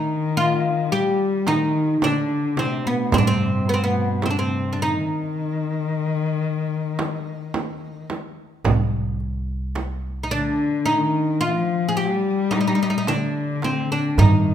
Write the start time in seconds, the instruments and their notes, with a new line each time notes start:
Already playing: cello D#3, oud D#4
0.36 oud F4, darbuka ka
0.91 cello G3, oud G4
1.47 cello D#3, oud D#4, darbuka tek, frame drum
2.01 cello D3, oud D4, darbuka tek, frame drum
2.56 cello C3, oud C4, darbuka tek, frame drum
2.83 cello B2, oud B3
3.10 upright bass G2, cello C3, oud C4, frame drum, darbuka dum
3.18 oud D4
3.24 cello C3, oud C4
3.65 cello B2, oud B3, darbuka ka
3.74 oud C4
3.80 cello B2, oud B3
4.22 cello C3, oud C4, darbuka tek, frame drum
4.30 oud D4
4.37 cello C3, oud C4
4.73 oud D4
4.78 cello D#3, oud D#4
5.89 darbuka ka
6.44 darbuka ka
6.99 darbuka tek, frame drum
7.54 darbuka tek, frame drum
8.10 frame drum
8.65 upright bass C2, darbuka dum, frame drum
9.20 darbuka ka
9.75 darbuka tek, frame drum
10.23 oud D#4
10.31 cello D3, oud D4
10.86 cello D#3, oud D#4
11.41 cello F3, oud F4, darbuka ka
11.89 oud G#4
11.97 cello G3, oud G4, darbuka ka
12.51 oud D#4, darbuka tek, frame drum
12.61 oud D#4
12.68 oud D#4
12.75 oud D#4
12.83 oud D#4
12.90 oud D#4
12.98 oud D#4
13.07 cello D3, oud D4, darbuka tek, frame drum
13.62 oud C4, darbuka tek, frame drum
13.90 cello D3, oud D4
14.18 upright bass G2, cello D#3, oud D#4, darbuka dum, frame drum